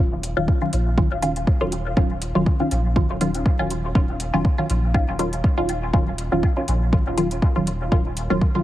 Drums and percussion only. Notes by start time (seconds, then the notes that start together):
0.23 closed hi-hat
0.48 kick
0.73 closed hi-hat
0.98 kick
1.22 closed hi-hat
1.36 closed hi-hat
1.47 kick
1.72 closed hi-hat
1.97 kick
2.22 closed hi-hat
2.46 kick
2.71 closed hi-hat
2.96 kick
3.21 closed hi-hat
3.34 closed hi-hat
3.46 kick
3.70 closed hi-hat
3.95 kick
4.20 closed hi-hat
4.45 kick
4.70 closed hi-hat
4.94 kick
5.19 closed hi-hat
5.33 closed hi-hat
5.44 kick
5.69 closed hi-hat
5.94 kick
6.18 closed hi-hat
6.43 kick
6.68 closed hi-hat
6.93 kick
7.18 closed hi-hat
7.31 closed hi-hat
7.42 kick
7.67 closed hi-hat
7.92 kick
8.17 closed hi-hat
8.41 kick